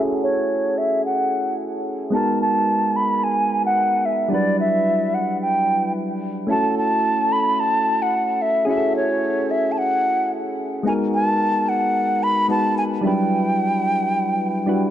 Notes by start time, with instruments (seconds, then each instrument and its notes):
Already playing: synth keys C#4 E4 F#4 G#4 A4
0.23 flute C#5
0.78 flute E5
1.05 flute F#5
2.10 synth keys G#3 B3 D#4, flute A5
2.15 synth keys F#4 A#4
2.42 flute A5
2.96 flute B5
3.24 flute G#5
3.66 flute F#5
4.05 flute E5
4.28 synth keys G3 D4 E4
4.33 synth keys F#3 B4, flute D5
4.60 flute E5
5.14 flute F#5
5.42 flute G5
6.47 synth keys A3 C#4 E4, flute A5
6.51 synth keys F#4 A4
6.78 flute A5
7.32 flute B5
7.60 flute A5
8.02 flute F#5
8.42 flute E5
8.65 synth keys C#4 E4 G#4, flute E5
8.69 synth keys F#4 G#4
8.77 synth keys A4
8.96 flute C#5
9.51 flute E5
9.72 flute A5
9.78 flute F#5
10.83 synth keys G#3 B3 D#4, flute G#5
10.87 synth keys F#4 A#4
11.14 flute A5
11.69 flute F#5
12.23 flute B5
12.48 synth keys G#3 B3 D#4 F#4 B4, flute A5
12.78 flute G#5
13.01 synth keys G3 D4 E4, flute G5
13.06 synth keys F#3 B4
14.66 synth keys G3 D4 E4 F#4 B4